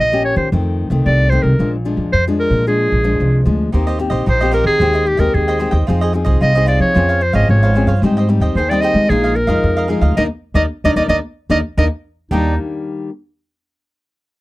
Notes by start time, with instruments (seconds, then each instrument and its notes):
0.00 upright bass A#1, nylon-string guitar A#2, clarinet D#5
0.12 nylon-string guitar A#3 C#4 G4
0.25 clarinet C#5
0.36 upright bass D#3, clarinet C5
0.52 upright bass F2, nylon-string guitar F2 D#3 A3 C4
0.90 upright bass C2, nylon-string guitar D#3 A3 C4
1.06 upright bass C2, nylon-string guitar C3, clarinet D5
1.29 nylon-string guitar D#3 A3 C4, clarinet C5
1.42 upright bass C2, clarinet A#4
1.59 upright bass A#1, nylon-string guitar A#2 F3 G#3 D4
1.85 nylon-string guitar F3 G#3 D4
1.97 upright bass F2
2.13 upright bass F2, nylon-string guitar F2, clarinet C5
2.28 nylon-string guitar F3 G#3 D4
2.39 clarinet A#4
2.50 upright bass A#2
2.67 nylon-string guitar A#2 F3 G#3 D4, clarinet G#4
2.92 upright bass A#1
3.04 nylon-string guitar F3 G#3 D4
3.20 upright bass C2, nylon-string guitar F2
3.45 upright bass D2, nylon-string guitar F3 G#3 D4
3.72 upright bass D#2, nylon-string guitar D#3 A#3 C4 G4, cavaquinho D#4 G4 C5 D#5
3.87 cavaquinho G4 C5 D#5
3.99 nylon-string guitar A#3 C4 G4, muted cavaquinho stroke
4.10 upright bass A#1, cavaquinho G4 C5 D#5
4.26 upright bass A#1, nylon-string guitar A#2, cavaquinho D#4 G4 C5 D#5, clarinet C5
4.41 nylon-string guitar A#3 C4 G4, cavaquinho G4 C5 D#5
4.51 cavaquinho D#4 G4 C5 D#5, clarinet A#4
4.64 upright bass D#3, clarinet G#4
4.80 upright bass D#2, nylon-string guitar D#3 G#3 C4 G4, cavaquinho G#4 C5 D#5 G5
4.93 cavaquinho C5 D#5 G5
5.06 clarinet G4, muted cavaquinho stroke
5.17 upright bass D#2, nylon-string guitar G#3 C4 G4, clarinet A#4, cavaquinho C5 D#5 G5
5.34 upright bass D#2, nylon-string guitar D#3, clarinet G#4
5.48 cavaquinho C5 D#5 G5
5.59 nylon-string guitar G#3 C4 G4, cavaquinho G#4 C5 D#5 G5
5.71 upright bass D#2, cavaquinho C5 D#5 G5
5.87 upright bass F2, nylon-string guitar F3 C4 D#4 G#4, cavaquinho F4 G#4 C5 D#5
6.01 cavaquinho G#4 C5 D#5
6.13 nylon-string guitar C4 D#4 G#4, muted cavaquinho stroke
6.25 upright bass C2, cavaquinho G#4 C5 D#5
6.41 upright bass C2, nylon-string guitar C3, cavaquinho F4 G#4 C5 D#5, clarinet D#5
6.55 nylon-string guitar C4 D#4 G#4, cavaquinho G#4 C5 D#5
6.66 cavaquinho F4 G#4 C5 D#5, clarinet D5
6.80 upright bass F3, clarinet C#5
6.94 upright bass F2, nylon-string guitar F3 C4 C#4 G#4, cavaquinho F4 C5 C#5 F5
7.09 cavaquinho C5 C#5 F5
7.21 clarinet C5, muted cavaquinho stroke
7.33 upright bass G#1, nylon-string guitar C4 C#4 G#4, cavaquinho C5 C#5 F5, clarinet D#5
7.49 upright bass G#1, nylon-string guitar F3, clarinet C#5
7.63 cavaquinho C5 C#5 F5
7.74 nylon-string guitar C4 C#4 G#4, cavaquinho F4 C5 C#5 F5
7.87 upright bass G2, cavaquinho C5 C#5 F5
8.02 upright bass G#2, nylon-string guitar G#2 G3 C4 D#4, cavaquinho G#4 C5 D#5 G5
8.17 cavaquinho C5 D#5 G5
8.29 nylon-string guitar G3 C4 D#4, muted cavaquinho stroke
8.40 upright bass D#2, cavaquinho C5 D#5 G5
8.55 upright bass D#2, nylon-string guitar D#3, cavaquinho G#4 C5 D#5, clarinet C5
8.59 cavaquinho G5
8.69 nylon-string guitar G3 C4 D#4, clarinet D5, cavaquinho D#5 G5
8.74 cavaquinho C5
8.81 cavaquinho G#4 C5 D#5 G5, clarinet D#5
8.94 upright bass G#3
9.09 upright bass A#1, nylon-string guitar A#2 F3 G#3 D#4, clarinet G#4, cavaquinho G#4 A#4 D#5 F5
9.24 cavaquinho A#4 D#5 F5
9.35 clarinet A#4, muted cavaquinho stroke
9.47 upright bass F2, nylon-string guitar F3 G#3 D#4, cavaquinho A#4 D#5 F5
9.63 upright bass F2, nylon-string guitar F2
9.77 cavaquinho A#4 D#5 F5
9.88 nylon-string guitar F3 G#3 D#4, cavaquinho G#4 A#4 D#5 F5
10.01 upright bass D2, cavaquinho A#4 D#5 F5
10.16 upright bass D#2, nylon-string guitar A#3 D4 D#4, cavaquinho A#4 D5 D#5, clarinet D#5
10.54 upright bass D#2, nylon-string guitar A#3 D4 D#4, cavaquinho A#4 D5 D#5, clarinet D#5
10.84 upright bass D#2, nylon-string guitar A#3 D4 D#4, cavaquinho A#4 D5 D#5, clarinet D#5
10.96 upright bass D#2, nylon-string guitar A#3 D4 D#4, cavaquinho A#4 D5 D#5, clarinet D#5
11.08 upright bass D#2, nylon-string guitar A#3 D4 D#4, cavaquinho A#4 D5 D#5, clarinet D#5
11.50 upright bass D#2, nylon-string guitar A#3 D4 D#4, cavaquinho A#4 D5 D#5, clarinet D#5
11.77 upright bass D#2, nylon-string guitar A#3 D4 D#4, cavaquinho A#4 D5 D#5, clarinet D#5
12.31 upright bass D#2, nylon-string guitar D#3 G3 A#3 D4, cavaquinho D4 G4 D5 D#5, clarinet D#4